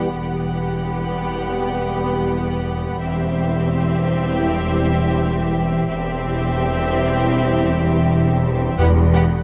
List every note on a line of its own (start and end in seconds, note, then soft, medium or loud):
0.11 2.96 E1 medium
0.11 2.97 E2 medium
0.11 2.97 E3 medium
0.11 2.97 G3 medium
0.11 2.96 B3 medium
0.11 2.97 B3 medium
0.11 2.96 G4 medium
0.11 2.97 G4 medium
0.11 2.97 F#5 medium
0.11 2.97 F#5 soft
0.11 2.97 B5 medium
2.99 5.86 E1 medium
2.99 5.86 E2 medium
2.99 5.72 E3 medium
2.99 5.72 G3 medium
2.99 5.70 C4 medium
2.99 5.86 C4 medium
2.99 5.70 E4 medium
2.99 5.86 G4 medium
2.99 5.86 E5 medium
2.99 5.87 G5 medium
2.99 5.87 C6 medium
5.87 8.75 E1 medium
5.87 8.75 E2 medium
5.87 8.75 E3 medium
5.87 8.75 G3 medium
5.87 8.73 C4 medium
5.87 8.75 C4 medium
5.87 8.74 E4 medium
5.87 8.74 G4 medium
5.87 8.75 E5 medium
5.87 8.74 G5 medium
5.87 8.74 C6 medium
8.77 9.42 E1 medium
8.77 9.43 E2 medium
8.77 9.04 E3 medium
8.77 9.04 G3 medium
8.77 9.04 B3 medium
8.77 8.87 B3 medium
8.77 8.86 G4 medium
8.77 9.04 G4 medium
8.77 9.43 G4 medium
8.77 8.86 F#5 medium
8.77 9.43 F#5 medium
8.77 9.43 B5 medium
9.14 9.23 B3 medium
9.14 9.23 G4 medium
9.14 9.22 F#5 medium